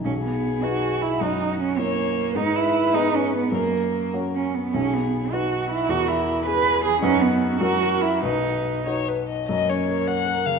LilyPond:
<<
  \new Staff \with { instrumentName = "Violin" } { \time 6/8 \key b \major \tempo 4. = 103 gis'2. | fis'4. cis''4. | b'2. | ais'2~ ais'16 r8. |
gis'4. fis'4. | ais'4. gis'4. | fis'4. ais'4. | b'4. cis''8 b'8 dis''8 |
\key fis \major dis''8 cis''4 fis''4 eis''8 | }
  \new Staff \with { instrumentName = "Grand piano" } { \time 6/8 \key b \major b,,4. <dis' fis' b'>4. | fis,4. <cis' e' cis''>4. | gis,4. <b dis' gis'>4. | fis,4. <cis' fis' cis''>4. |
b,,4. <dis' fis' b'>4. | e,4. <e' gis' b'>4. | <fis, dis' fis' b'>4. <fis, e' fis' ais'>4. | b,,4. <dis' fis' b'>4. |
\key fis \major fis,8 cis'8 ais'8 cis''8 ais'8 cis8 | }
  \new Staff \with { instrumentName = "Cello" } { \time 6/8 \key b \major cis'8 b4 fis'4 e'8 | dis'4 cis'8 ais4. | dis'8 e'4 dis'8 cis'8 b8 | ais4. r8 cis'8 b8 |
cis'8 b4 fis'4 e'8 | fis'8 e'4 b'4 gis'8 | cis'8 b4 fis'4 e'8 | dis'4. r4. |
\key fis \major ais2. | }
>>